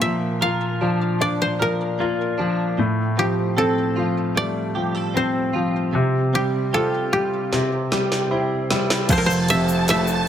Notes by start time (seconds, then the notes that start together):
Already playing: A#2 F4 A4
0.01 F3 A#3 E5
0.41 F4 A#4 F5
0.81 F3 D4
1.20 F3 D4 D5
1.42 C5
1.59 F3 A#4
1.99 A#3 F4
2.38 F3 D4
2.78 A2
3.17 F3 C4 G4
3.57 C4 A4
3.96 F3 F4
4.35 G3 A3 D5
4.75 F3 G4
4.95 A4
5.14 C4 C5
5.53 F3 F4
5.93 C3
6.33 G3 C4 G4
6.73 F4 G4 A4
7.12 G3 F4 G4
7.53 C3, snare
7.92 G3 G4, snare
8.12 snare
8.31 C4 E4
8.70 G3 E4, snare
8.90 snare
9.08 F1 F2 F3 A4 C5 A5, kick, crash, ride, shaker
9.18 A#4
9.26 C5
9.31 shaker
9.48 C3 C4 E5, ride, shaker
9.69 shaker
9.88 A3 E4 E5, snare, ride, shaker
10.07 shaker